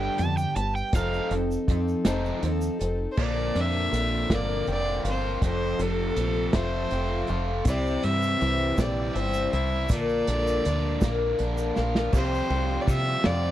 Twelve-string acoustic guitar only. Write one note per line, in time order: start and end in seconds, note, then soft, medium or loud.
0.00 0.20 G2 medium
0.00 0.20 D3 medium
0.00 0.16 G3 medium
0.00 0.18 B3 medium
0.00 0.19 D4 medium
0.00 0.19 G4 medium
0.17 0.56 G3 medium
0.17 0.58 B3 medium
0.17 0.56 D4 medium
0.17 0.55 G4 medium
0.56 0.94 G3 soft
0.56 0.95 B3 medium
0.56 0.95 D4 medium
0.56 0.95 G4 medium
0.95 1.32 F3 medium
0.95 1.33 C4 medium
0.95 1.32 D#4 medium
0.95 1.31 A4 medium
1.32 1.70 C4 soft
1.32 1.70 D#4 soft
1.32 1.70 A4 medium
1.71 2.07 F3 medium
1.71 2.07 C4 medium
1.71 2.06 D#4 medium
1.71 2.05 A4 medium
2.06 2.42 F3 medium
2.06 2.41 C4 medium
2.06 2.43 D#4 medium
2.06 2.44 A4 medium
2.42 2.81 F3 medium
2.42 2.81 C4 medium
2.42 2.81 D#4 medium
2.42 2.78 A4 medium
2.79 3.17 C4 medium
2.79 3.18 D#4 medium
2.79 3.18 A4 medium
3.16 3.55 A#2 medium
3.16 3.55 D3 medium
3.16 3.56 F3 medium
3.16 3.56 C4 medium
3.16 3.55 D4 medium
3.16 3.54 A#4 medium
3.55 3.92 F3 soft
3.55 3.94 C4 soft
3.55 3.94 D4 medium
3.55 3.93 A#4 medium
3.93 4.31 F3 soft
3.93 4.31 C4 medium
3.93 4.31 D4 medium
3.93 4.31 A#4 medium
4.32 4.70 A#2 medium
4.32 4.69 D3 medium
4.32 4.69 F3 medium
4.32 4.69 C4 medium
4.32 4.69 D4 medium
4.32 4.69 A#4 medium
4.70 5.06 F3 medium
4.70 5.06 C4 medium
4.70 5.07 D4 medium
4.70 5.06 A#4 medium
5.07 5.43 F3 soft
5.07 5.44 C4 medium
5.07 5.44 D4 medium
5.07 5.43 A#4 medium
5.44 5.81 F3 medium
5.44 5.81 C4 medium
5.44 5.82 F4 medium
5.44 5.81 A4 medium
5.82 6.19 C4 soft
5.82 6.19 F4 soft
5.82 6.18 A4 medium
6.18 6.55 F3 medium
6.18 6.56 C4 medium
6.18 6.56 F4 medium
6.18 6.55 A4 medium
6.56 6.90 F3 medium
6.56 6.92 C4 medium
6.56 6.92 F4 medium
6.56 6.93 A4 medium
6.91 7.29 F3 medium
6.91 7.30 C4 medium
6.91 7.29 F4 medium
6.91 7.27 A4 medium
7.28 7.66 C4 medium
7.28 7.67 F4 medium
7.28 7.66 A4 medium
7.67 8.04 C3 medium
7.67 8.04 G3 medium
7.67 8.03 C4 medium
7.67 8.02 E4 medium
7.67 8.00 C5 medium
8.02 8.38 C4 medium
8.02 8.39 E4 medium
8.02 8.40 C5 medium
8.39 8.77 G3 medium
8.39 8.76 C4 medium
8.39 8.76 E4 medium
8.39 8.75 C5 medium
8.76 9.16 C3 medium
8.76 9.13 G3 medium
8.76 9.15 C4 medium
8.76 9.15 E4 medium
8.76 9.14 C5 medium
9.15 9.52 G3 medium
9.15 9.53 C4 medium
9.15 9.52 E4 medium
9.15 9.51 C5 medium
9.52 9.91 C4 soft
9.52 9.90 E4 medium
9.52 9.89 C5 medium
9.90 10.27 A#2 medium
9.90 10.28 D3 medium
9.90 10.28 F3 medium
9.90 10.28 A#3 medium
9.90 10.27 D4 medium
9.90 10.25 A#4 medium
10.26 10.63 F3 soft
10.26 10.65 A#3 soft
10.26 10.65 D4 medium
10.26 10.64 A#4 medium
10.64 11.02 F3 medium
10.64 11.02 A#3 medium
10.64 11.02 D4 medium
10.64 11.01 A#4 medium
11.02 11.40 A#2 medium
11.02 11.40 D3 medium
11.02 11.38 F3 medium
11.02 11.39 A#3 medium
11.02 11.40 D4 medium
11.02 11.39 A#4 medium
11.40 11.76 F3 medium
11.40 11.77 A#3 medium
11.40 11.76 D4 medium
11.40 11.75 A#4 medium
11.77 12.14 F3 medium
11.77 12.15 A#3 medium
11.77 12.14 D4 medium
11.77 12.14 A#4 medium
12.14 12.51 C3 medium
12.14 12.51 F3 medium
12.14 12.51 C4 medium
12.14 12.52 F4 medium
12.14 12.50 G4 loud
12.51 12.88 C4 medium
12.51 12.89 F4 soft
12.51 12.88 G4 medium
12.88 13.25 F3 medium
12.88 13.25 C4 medium
12.88 13.24 F4 medium
12.88 13.23 G4 medium
13.24 13.51 C3 medium
13.24 13.51 F3 medium
13.24 13.51 C4 medium
13.24 13.51 F4 medium
13.24 13.51 G4 medium